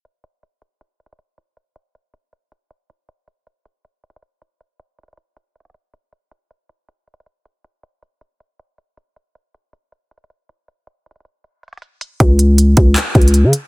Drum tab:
HH |x-----------x-----------x-----------x-----------x-----------x---x---x---x-----------x-----------|x-----------x-----------x-----------x-----------x-----------x-----------x-----------x-----------|x-----------x-----------x-----------x-----------x-----------x---x---x---x-----------x-----------|x-----------x-----------x--x--x--x--x-----------x-----------x--x--x--x--x-----------x-----------|
CP |------------------------------------------------------------------------------------------------|------------------------------------------------------------------------------------------------|------------------------------------------------------------------------------------------------|------------------------------------------------------------------------------------------------|
BD |------------------------------------------------------------------------------------------------|------------------------------------------------------------------------------------------------|------------------------------------------------------------------------------------------------|------------------------------------------------------------------------------------------------|

HH |x-----------x-----------x-----------x-----------x-----------x---x---x---x-----------x-----------|x-----------x-----------x-----------x-----------x-----------x-----------x-----------x-----------|x-----------x-----------x-----------x-----------x-----------x---x---x---x-----------x-----------|x-----------x-----------x--x--x--x--x-----------x-----------x--x--x--x--x-----------x-----------|
CP |------------------------------------------------------------------------------------------------|------------------------------------------------------------------------------------------------|------------------------------------------------------------------------------------------------|------------------------------------------------------------------------------------------------|
BD |------------------------------------------------------------------------------------------------|------------------------------------------------------------------------------------------------|------------------------------------------------------------------------------------------------|------------------------------------------------------------------------------------------------|

HH |x-----------x-----------x-----------x-----------x-----------x---x---x---x-----------x-----------|
CP |------------------------------------------------x-----------------------------------------------|
BD |o-----------------------------------o-----------------------o-----------------------------------|